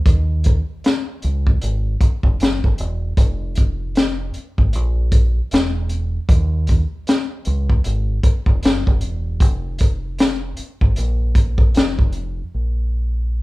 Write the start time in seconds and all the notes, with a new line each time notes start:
0.06 D#2, kick, closed hi-hat
0.44 kick, closed hi-hat
0.84 snare, closed hi-hat
1.22 C#2, closed hi-hat
1.47 kick
1.62 G#1, closed hi-hat
2.01 kick, closed hi-hat
2.23 F1, kick
2.40 F#1, snare, closed hi-hat
2.64 G1, kick
2.78 E1, closed hi-hat
3.17 F1, kick, closed hi-hat
3.55 kick, closed hi-hat
3.95 snare, closed hi-hat
4.34 muted fingered electric bass stroke, closed hi-hat
4.58 G#1, kick
4.73 A#1, closed hi-hat
5.12 kick, closed hi-hat
5.51 E1, snare, closed hi-hat
5.89 closed hi-hat
6.29 D#2, kick, closed hi-hat
6.67 kick, closed hi-hat
7.07 snare, closed hi-hat
7.45 C#2, closed hi-hat
7.70 kick
7.84 G#1, closed hi-hat
8.23 kick, closed hi-hat
8.46 F1, kick
8.63 F#1, snare, closed hi-hat
8.87 G1, kick
9.01 E1, closed hi-hat
9.40 F1, kick, closed hi-hat
9.78 kick, closed hi-hat
10.19 snare, closed hi-hat
10.57 muted fingered electric bass stroke, closed hi-hat
10.81 G#1, kick
10.96 A#1, closed hi-hat
11.35 kick, closed hi-hat
11.58 kick
11.75 F1, snare, closed hi-hat
11.99 kick
12.13 closed hi-hat
12.54 A#1